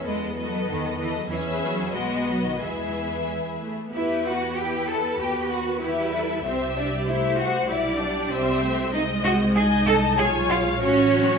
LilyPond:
<<
  \new Staff \with { instrumentName = "Violin section" } { \time 2/4 \key e \major \tempo 4 = 95 dis''8 dis''4 dis''8 | e''4 dis''4 | e''4. r8 | \key e \minor b'4 b'4~ |
b'4 b'4 | e''4 c''4 | d''4 e''4 | \key gis \phrygian dis''4 dis''4 |
cis''4 cis''4 | }
  \new Staff \with { instrumentName = "Violin section" } { \time 2/4 \key e \major <a' b'>8 <a' b'>4 <a' b'>8 | <gis' b'>4 <fis' b'>4 | <gis' b'>4. r8 | \key e \minor e''8 fis''8 g''8 a''8 |
g''8 fis''8 e''4 | c''8 d''8 e''8 fis''8 | e''8 d''8 c''4 | \key gis \phrygian dis''8 fis''8 gis''8 a''8 |
gis''8 eis''8 cis''4 | }
  \new Staff \with { instrumentName = "Cello section" } { \time 2/4 \key e \major gis8 fis8 dis8 e16 fis16 | e8 fis8 gis8 fis16 dis16 | e4. r8 | \key e \minor e'8 fis'8 g'8 a'8 |
g'8 fis'8 e'4 | c'8 d'8 e'8 fis'8 | e'8 d'8 c'4 | \key gis \phrygian dis'8 fis'8 gis'8 a'8 |
gis'8 eis'8 cis'4 | }
  \new Staff \with { instrumentName = "Viola section" } { \time 2/4 \key e \major << { b2 | cis'4 b4 | gis4 gis8 a8 | \key e \minor g'4 e'4 |
fis'4 g'8 a'8 | g'2 | g'2 | \key gis \phrygian bis4 dis'4 |
eis'4 fis'8 fis'8 | } \\ { r2 | r2 | r2 | b2 |
b4 g4 | g4 a4 | g4 g8 a8 | gis2 |
gis4 fis4 | } >> }
  \new Staff \with { instrumentName = "Double bass section" } { \clef bass \time 2/4 \key e \major e,4 e,4 | e,4 b,,4 | e,4. r8 | \key e \minor e,2 |
dis,4 e,4 | c,2 | b,,4 c,4 | \key gis \phrygian bis,,2 |
b,,4 a,,4 | }
>>